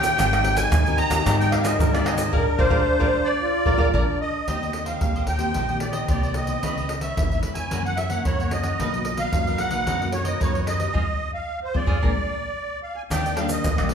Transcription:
Already playing: A#2 D#3 G5
0.02 G4 C#5 D#5, pandeiro, shaker, surdo
0.17 G#1 G#3 C4 D#4 G4 A#4 C5 D#5 G#5, pandeiro, tamborim, shaker, surdo
0.33 C5 D#5, pandeiro, tamborim, shaker
0.43 C4 G4 A#4, muted cavaquinho stroke, pandeiro
0.55 C5 D#5 G#5, pandeiro, shaker, surdo
0.72 D#2 D#3, pandeiro, tamborim, shaker, surdo
0.86 C4 G4 A#4 C5 D#5 G#5, pandeiro, shaker
0.96 G4 C5 D#5 G#5 A#5, pandeiro
1.10 D#2 C4 G4 A#4 C5 D#5 G#5, pandeiro, tamborim, shaker, surdo
1.26 G#2 G#3 C4 G4 A#4 C5 D#5 G#5, pandeiro, tamborim, shaker, surdo
1.40 C5 D#5 G5 G#5, pandeiro, shaker
1.51 C4 G4 A#4 F5, muted cavaquinho stroke, pandeiro, tamborim, surdo
1.63 C5 D#5 G#5, pandeiro, tamborim, shaker
1.79 G#2 D#3 A#4, pandeiro, shaker, surdo
1.93 C4 G4 A#4 C5 D5 D#5 G#5, pandeiro, tamborim, shaker
2.04 G4 C5 D#5 G#5, pandeiro, tamborim
2.17 C5 D#5 G#5, pandeiro, shaker, surdo
2.32 A#1 D4 F4 G#4 A#4 D5 F5, surdo
2.58 A#1 F4 G#4 A#4 C5 D5 F5, surdo
2.70 A#1 F4 G#4 A#4 D5 F5, surdo
2.99 A#1 F4 G#4 A#4 D5 F5, surdo
3.25 D5
3.41 F4
3.66 A#1 F4 G#4 A#4 D5 F5, surdo
3.77 A#1 F4 G#4 A#4 D5 F5, surdo
3.93 A#1 D4 F4 G#4 A#4 D5 F5, surdo
4.21 D#5
4.48 D#2 D#3 A#3 C4 D#4 G4 C5 D#5, pandeiro, surdo
4.61 A#3 C4 G4 C5 D#5, pandeiro
4.73 muted cavaquinho stroke, pandeiro
4.84 G4 C5 D#5 F5, pandeiro
5.01 A#1 A#2 A#3 C4 G4, pandeiro, surdo
5.16 G4 C5 D#5, pandeiro
5.27 D#2 D#4 G4 C5 D#5 G5, pandeiro
5.38 A#3 C4 G4 C5 D#5, pandeiro
5.54 A#1 D#3 D#4 G4 C5 D#5, pandeiro, surdo
5.69 A#3 C4 G4 C5 D#5, pandeiro
5.80 D5, muted cavaquinho stroke, pandeiro
5.92 G4 C5 D#5, pandeiro
6.08 C2 A#2 A#3 C4 D#4 G4 C5 D5 D#5, pandeiro, surdo
6.23 G4 C5 D#5, pandeiro
6.34 D#5, pandeiro
6.47 E3 B3 D#4 G4 C5 D#5, pandeiro
6.63 C#2 C#3 E4 B4 C#5 E5, pandeiro, surdo
6.78 B4 C#5 E5, pandeiro
6.89 muted cavaquinho stroke, pandeiro
7.01 B4 C#5 E5, pandeiro
7.17 G#1 G#2 E3 B3 D#4, pandeiro, surdo
7.32 B4 C#5 E5, pandeiro
7.43 E2 E4 B4 C#5 E5, pandeiro, surdo
7.54 B4 C#5 E5 G#5, pandeiro
7.71 F#2 E3 A#3 C#4 E4 A#4 C#5 F#5, pandeiro, surdo
7.85 A#4 C#5 F#5, pandeiro
7.97 E5, muted cavaquinho stroke, pandeiro
8.09 E3 A#3 C#4 A#4 C#5 F#5, pandeiro
8.25 F#2 C#3 E4 A#4 C#5 F#5, pandeiro, surdo
8.40 E3 A#3 C#4 A#4 C#5 F#5, pandeiro
8.51 E3 A#3 C#4 D#5, pandeiro
8.63 A#4 C#5 F#5, pandeiro
8.79 B1 B2 A#3 D#4 F#4 A#4 B4 D#5, pandeiro, surdo
8.94 A#3 D#4 F#4 A#4 B4 D#5, pandeiro
9.05 muted cavaquinho stroke, pandeiro
9.17 A#4 B4 D#5 F5, pandeiro
9.33 F#2 A#3 D#4 F#4, pandeiro, surdo
9.47 A#4 B4 D#5, pandeiro
9.58 B1 D#4 A#4 B4 D#5 F#5, pandeiro
9.71 A#3 D#4 F#4 A#4 B4 D#5, pandeiro
9.86 F#2 B2 D#4 A#4 B4 D#5, pandeiro, surdo
10.01 A#3 D#4 F#4 A#4 B4 D#5, pandeiro
10.12 C#5, muted cavaquinho stroke, pandeiro
10.25 A#4 B4 D#5, pandeiro
10.40 F#2 A#3 D#4 F#4 A#4 B4 C#5 D#5, pandeiro, surdo
10.54 A#4 B4 D#5, pandeiro
10.67 D#5, pandeiro
10.78 G#3 D#4 G4 A#4 B4 D#5, pandeiro
10.93 F2 F3 G#3 C4 F4 G#4 C5, surdo
11.34 F5
11.64 C5
11.74 F2 F3 G#3 C4 F4 G#4 C5 D5, surdo
11.86 F2 F3 G#3 C4 F4 G#4 C5, surdo
12.02 A#1 G#3 A#3 D4 G#4 A#4 D5, surdo
12.83 F5
12.96 G#5
13.10 D#2 D#3 A#3 D4 G4 D5 D#5 G5, pandeiro, tamborim, shaker, surdo
13.24 G4 D5 D#5, pandeiro, shaker
13.36 G3 A#3 D4 G4 D5 D#5 F5, pandeiro
13.49 D#5, muted cavaquinho stroke, pandeiro, shaker
13.64 D#2 A#2, pandeiro, tamborim, shaker, surdo
13.78 A#1 G3 A#3 D4 G4 D5 D#5, pandeiro, tamborim, shaker
13.89 D4 G4, pandeiro

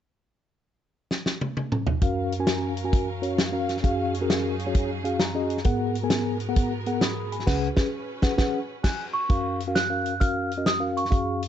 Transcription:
1.11 snare
1.26 snare
1.41 high tom
1.57 high tom
1.72 mid tom
1.87 floor tom
2.01 F#2 C#4 F#4 A#4 F5, kick, closed hi-hat
2.32 closed hi-hat
2.40 C#4 F#4 A#4 G#5
2.47 snare, closed hi-hat
2.77 closed hi-hat
2.84 C#4 F#4 A#4 G#5
2.93 kick, closed hi-hat
3.22 C#4 F#4 A#4 C#5, closed hi-hat
3.38 snare, closed hi-hat
3.52 C#4 F#4 A#4 F5
3.69 snare, closed hi-hat
3.77 snare
3.83 F#2 F#3 C#4 D#4 F#4 G#4 F5, kick, closed hi-hat
4.14 closed hi-hat
4.21 C#4 F#4 G#4 A#4
4.30 snare, closed hi-hat
4.59 closed hi-hat
4.67 C#4 F#4 G#4 C#5
4.75 kick, closed hi-hat
5.04 C#4 F#4 G#4 F5, closed hi-hat
5.19 A#5, snare, closed hi-hat
5.35 C#4 F#4 G#4 D#5
5.50 closed hi-hat
5.57 snare
5.64 G#2 B3 G#4 A#4 F#5, kick, closed hi-hat
5.95 closed hi-hat
6.04 B3 G#4 A#4 G#5
6.10 snare, closed hi-hat
6.40 closed hi-hat
6.49 B3 G#4 A#4 F#5
6.56 kick, closed hi-hat
6.86 B3 G#4 A#4 F#5, closed hi-hat
7.01 B5 D#6, snare, closed hi-hat
7.32 G#5 B5, closed hi-hat
7.40 snare
7.46 C#2 C#3 C#4 G#4 B4 F#5, kick, snare, crash
7.77 C#4 G#4 B4, kick, snare
8.22 C#4 G#4 B4 F#5, kick, snare
8.38 C#4 G#4 B4 F#5, kick, snare
8.84 G#5 F#6, kick, snare, crash
9.13 C#6
9.29 F#2 C#4 F#4 A#4 F5, kick, closed hi-hat
9.60 closed hi-hat
9.67 C#4 F#4 A#4 F5
9.75 F#6, snare, closed hi-hat
9.90 C#4 F#4 A#4 F5
10.06 closed hi-hat
10.20 C#4 F#4 A#4 F5 F6, kick, closed hi-hat
10.51 closed hi-hat
10.57 C#4 F#4 A#4 D#5
10.66 D#6, snare, closed hi-hat
10.80 C#4 F#4 A#4 F5
10.97 C#6, closed hi-hat
11.05 snare
11.10 F#2 C#4 F#4 G#4 F5, kick, closed hi-hat
11.42 closed hi-hat

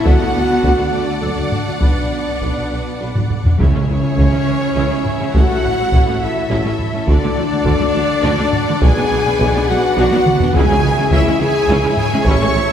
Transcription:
Already playing: A4
0.05 D2 B3 D4 F#4 A4 D5 F#5, taiko
0.21 D2 D4 F#4
0.34 D2 D4
0.49 D2 D4 F#4
0.63 D2 D4 A4, taiko
0.77 D2 D4 F#4
0.92 D2 A3 D4 D5
1.22 D2 F#3 D4 A4
1.36 D2 D4 F#4
1.52 A3, taiko low-mid
1.66 D2 D4 F#4
1.81 B1 B3 D4 B4 D5, taiko
1.96 B1 D4 F#4
2.11 B1 D4
2.26 B1 D4 F#4
2.41 B1 D4 B4, taiko
2.56 B1 D4 F#4
2.70 B1 D4
3.00 B1 D4 B4
3.15 B1 D4 F#4, taiko low-mid
3.30 taiko low-mid
3.45 B1 D4 F#4, taiko low
3.58 C#2 C#3 C#4 E4 G#4 C#5 E5, taiko
3.74 C#3 G#3 C#4
3.88 C#2 C#3 E3 G#3
4.03 C#3 G#3 C#4
4.16 C#2 C#3 C#4 E4, taiko
4.32 C#3 G#3 C#4
4.46 C#2 C#3 E3 G#3
4.61 taiko rim
4.75 C#2 C#3 C#4 E4
4.91 C#3 G#3 C#4
5.05 taiko low-mid
5.20 C#3 G#3 C#4
5.33 A1 A2 C#4 E4 F#4 A4 F#5, taiko
5.50 A2 A3 C#4
5.64 A1 A2 E3 A3
5.79 A2 A3 C#4
5.93 A1 A2 C#4 E4, taiko
6.07 A2 A3 C#4
6.20 A1 A2 E3 A3 E4 E5
6.49 A1 A2 C#4 E4
6.64 A2 A3 C#4
6.79 taiko low-mid
6.93 A2 A3 C#4
7.07 D2 D3 D4 F#4 D5 F#5, taiko
7.23 D3 A3 D4
7.36 D2 D3 F#3 A3
7.50 D3 A3 D4
7.65 D2 D3 D4 F#4, taiko
7.79 D3 A3 D4
7.94 D2 D3 F#3 A3
8.23 D2 D3 D4 F#4
8.38 D3 A3 D4
8.53 taiko low-mid
8.68 D3 A3 D4
8.80 B1 B2 D4 F#4 G#4 B4 G#5, taiko
8.96 B2 B3 D4
9.10 B1 B2 F#3 B3
9.26 B2 B3 D4, taiko rim
9.39 B1 B2 D4 F#4, taiko
9.53 B2 B3 D4
9.68 B1 B2 F#3 B3 F#4 F#5
9.96 B1 B2 D4 F#4
10.11 B2 B3 D4, taiko high
10.26 taiko mid
10.40 B2 B3 D4, taiko low
10.53 C#2 C#3 C#4 E4 G#4 C#5 E5 G#5, taiko
10.70 C#3 G#3 C#4
10.83 C#2 C#3 E3 G#3
10.97 C#3 G#3 C#4, taiko rim
11.11 C#2 C#3 C#4 E4 E5, taiko
11.27 C#3 G#3 C#4
11.39 C#2 C#3 E3 G#3 G#4 G#5
11.69 C#2 C#3 C#4 E4
11.83 C#3 G#3 C#4
11.96 G#4 G#5, taiko low-mid
12.12 C#3 G#3 C#4, taiko rim
12.25 A1 A2 C#4 E4 A4 C#5 C#6, taiko
12.41 A2 A3 C#4
12.55 A1 A2 E3 A3

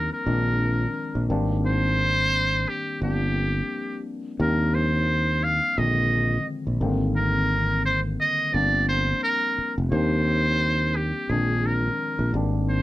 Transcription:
Already playing: F3 G3 A#3 C4 D4 A#4
0.13 A#4
0.26 A#1 D#3 F3 G#3 C4 D4
1.15 A#1
1.28 G#1 D#3 G3 A#3 C4 D4
1.66 C5
2.68 G4
3.01 G1 F3 G3 A#3 C4 D4 G4
4.39 D#2 F3 G3 A#3 C4 C#4 A#4
4.49 D4
4.74 C5
5.44 F5
5.78 A#1 D3 D#3 F3 G#3 C4 D#5
6.67 A#1
6.80 G#1 D3 D#3 G3 A#3 C4
7.16 A#4
7.85 C5
8.20 D#5
8.52 G1 F3 G3 A#3 C4 D4 D5
8.89 C5
9.23 A#4
9.58 muted fretless electric bass stroke
9.78 F1
9.91 D#2 F3 G3 A#3 C4 D4 C5
10.96 G4
11.30 A#1 D3 F3 G#3 C4 D4 G#4
11.36 D#3
11.66 A#4
12.19 A#1
12.32 G#1 D#3 G3 A#3 C4 D4
12.70 C5

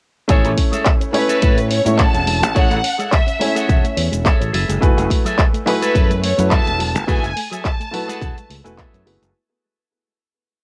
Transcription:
0.28 A1 G#3 A3 C#4 E4 G#4 A4 C#5 E5 G#5, kick, closed hi-hat, shaker
0.44 A1 A3, closed hi-hat, shaker
0.57 C#4, kick, open hi-hat
0.72 G#3 G#4 A4 C#5 E5, closed hi-hat, shaker
0.85 A3, kick, clap, closed hi-hat, shaker
1.00 C#4, closed hi-hat, shaker
1.13 G#3 A3 C#4 E4 B4 C#5 G#5, muted clean electric guitar stroke, clap, open hi-hat
1.28 A3 G#4 A4 C#5 E5, closed hi-hat, shaker
1.42 A2 G#3, kick, closed hi-hat, shaker
1.57 A3, closed hi-hat, shaker
1.70 C#4 C#5, open hi-hat
1.85 A2 G#3 A3 C#4 E4 C#5 E5, muted clean electric guitar stroke, closed hi-hat, shaker
1.98 A3 G#4 A4 C#5 F#5 A5, kick, clap, closed hi-hat, shaker
2.14 E1 C#4, closed hi-hat, shaker
2.27 G#3, open hi-hat
2.42 A1 A3, closed hi-hat, shaker
2.55 A1 G#3 A3 C#4 E4 G#4 A4 C#5 E5 F#5, kick, closed hi-hat, shaker
2.70 A1 A3, closed hi-hat, shaker
2.83 C#4, open hi-hat
2.98 G#3 G#4 A4 C#5 E5, closed hi-hat, shaker
3.12 A3 E5, kick, clap, closed hi-hat, shaker
3.27 C#4, closed hi-hat, shaker
3.39 G#3 A3 C#4 E4 C#5 G#5, muted clean electric guitar stroke, open hi-hat
3.55 A3 G#4 A4 C#5 F#5, closed hi-hat, shaker
3.68 E1 G#3, kick, closed hi-hat, shaker
3.84 A3, closed hi-hat, shaker
3.97 E2 C#4, open hi-hat
4.12 E1 G#3, muted clean electric guitar stroke, closed hi-hat, shaker
4.25 A3 G#4 A4 C#5 E5, kick, clap, closed hi-hat, shaker
4.40 A1 C#4, closed hi-hat, shaker
4.53 F#1 F#3 G#4 A4 B4 E5, open hi-hat
4.69 F#1 G#3, closed hi-hat, shaker
4.81 F#1 F#3 A3 E4 F#4 B4 G#5, kick, closed hi-hat, shaker
4.97 F#1 G#3, closed hi-hat, shaker
5.10 A3, kick, open hi-hat
5.24 F#3 G#4 A4 B4 E5, closed hi-hat, shaker
5.38 G#3, kick, clap, closed hi-hat, shaker
5.53 A3, closed hi-hat, shaker
5.66 F#3 A3 E4 F#4 B4 G#5, muted clean electric guitar stroke, clap, open hi-hat
5.81 G#3 G#4 A4 B4 E5, closed hi-hat, shaker
5.95 F#2 F#3, kick, closed hi-hat, shaker
6.10 G#3, closed hi-hat, shaker
6.23 A3 C#5, open hi-hat
6.38 F#2 F#3 A3 E4 F#4 B4 F#5, muted clean electric guitar stroke, closed hi-hat, shaker
6.50 G#3 G#4 A4 B4 E5 A5, kick, clap, closed hi-hat, shaker
6.66 E1 A3, closed hi-hat, shaker
6.79 F#3, open hi-hat
6.94 F#1 G#3, closed hi-hat, shaker
7.07 F#1 F#3 A3 E4 F#4 G#4 A4 B4 E5 G#5, kick, closed hi-hat, shaker
7.23 F#1 G#3, closed hi-hat, shaker
7.36 A3, open hi-hat
7.51 F#3 G#4 A4 B4 E5, closed hi-hat, shaker
7.64 G#3 A5, kick, clap, closed hi-hat, shaker
7.80 A3, closed hi-hat, shaker
7.91 F#3 A3 E4 F#4 B4 F#5, muted clean electric guitar stroke, open hi-hat
8.07 G#3 G#4 A4 B4 F#5, closed hi-hat, shaker
8.21 E1 F#3, kick, closed hi-hat, shaker
8.37 G#3, closed hi-hat, shaker
8.50 C#2 A3, open hi-hat
8.64 E1 A3 E4 F#4 B4 G#5, muted clean electric guitar stroke, closed hi-hat, shaker
8.77 B3 G#4 A4 B4 E5, kick, clap, closed hi-hat, shaker
8.93 F#2 B3, closed hi-hat, shaker
9.06 F#1 A3 B3 E4 F#4 G#4 B4, open hi-hat
9.22 F#1 G#3, closed hi-hat, shaker

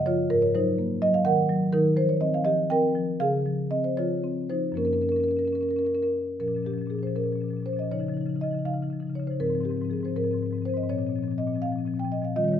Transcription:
Already playing: F#2 C#3
0.06 F3 F4 C#5
0.30 G#2 A#4
0.42 C#5
0.55 F#3 D#4 C5
0.79 A#3
1.02 F#3 D#5
1.14 F5
1.25 D#3 A#4 F#5
1.49 F#3
1.73 D#3 D#4 A#4
1.97 F3 C5
2.09 C#5
2.21 C4 D#5
2.34 F5
2.44 F3 G4 D#5
2.70 C4 A#4 G5
2.95 F3
3.20 C#3 G#4 F5
3.46 F3
3.71 C4 D#5
3.84 C5
3.97 F3 F4 C#5
4.24 C4
4.50 F3 D#4 C5
4.72 F#2 F3 A#3
4.77 C#4 A#4
4.85 C#4 A#4
4.93 C#4 A#4
5.01 C#4 A#4
5.09 C#4 A#4
5.16 C#4 A#4
5.24 A#4
5.29 C#4 A#4
5.37 C#4 A#4
5.45 C#4 A#4
5.52 C#4 A#4
5.61 C#4 A#4
5.69 C#4 A#4
5.76 C#4 A#4
5.85 C#4 A#4
5.95 C#4 A#4
6.02 C#4 A#4
6.40 A#2 F3 C#4 A#4
6.47 A#2 F3 C#4
6.55 A#2 F3 C#4
6.63 F3 C#4 G4
6.68 A#2 C#4
6.73 F3
6.78 A#2 F3 C#4
6.85 A#2 C#4
6.90 F3 C#4 G#4
6.95 A#2 F3 C#4
7.03 A#2 C#4 C5
7.07 F3
7.16 A#2 F3 C#4 A#4
7.24 A#2 F3 C#4
7.32 A#2 F3 C#4
7.41 A#2 F3 C#4
7.49 F3 C#4
7.53 A#2 C#4
7.60 A#2 F3
7.65 F3 C#4 C5
7.73 A#2 F3 C#4
7.79 A#2 C#4 D#5
7.84 F3
7.91 C#3 F3 D#4 C#5
7.99 C#3 F3 D#4
8.06 C#3 F3 D#4
8.14 C#3 F3 D#4
8.21 D#4
8.26 C#3 F3 D#4
8.35 C#3 F3 D#4
8.41 C#3 F3 D#4 D#5
8.51 C#3 F3 D#4
8.59 D#4
8.65 C#3 F3 D#4 F5
8.74 C#3 F3 D#4
8.82 C#3 F3 D#4
8.90 C#3 F3 D#4
9.00 C#3 F3 D#4
9.07 C#3 F3 D#4
9.15 D#4 C#5
9.20 C#3 F3
9.24 C#3 D#4 C5
9.30 F3 D#4
9.40 G#2 F3 C4 A#4
9.47 G#2 F3 C4
9.54 F3 C4
9.60 G#2 F3 C4
9.65 C4 G4
9.71 G#2 F3
9.77 F3 C4
9.82 G#2 C4
9.90 G#2 F3 C4 G#4
9.98 F3 C4
10.03 G#2 F3 C5
10.08 C4
10.16 G#2 F3 C4 A#4
10.24 G#2 F3 C4
10.31 G#2 F3 C4
10.39 F3 C4
10.46 C4
10.51 G#2 F3 C4
10.59 F3 C4
10.63 G#2 C5
10.68 F3 C4
10.74 G#2 F3 C4 D#5
10.84 G#2 C4
10.89 A#2 F3 C4 C#5
10.98 A#2 F3 C4
11.06 A#2 F3 C4
11.15 A#2 F3 C4
11.23 F3 C4
11.28 A#2 F3 C4
11.38 A#2 F3 C4 D#5
11.47 A#2 F3 C4
11.54 A#2 F3 C4
11.62 F3 C4 F5
11.66 A#2 C4
11.72 F3
11.76 A#2 F3 C4
11.85 A#2 F3 C4
11.94 A#2 F3 C4
11.99 A#2 G5
12.05 F3 C4
12.12 A#2 F3 C4 D#5
12.22 A#2 F3 C4 F5
12.36 D#3 G3 F4 D#5
12.44 D#3 G3 F4
12.48 F4 C#5
12.53 D#3 G3

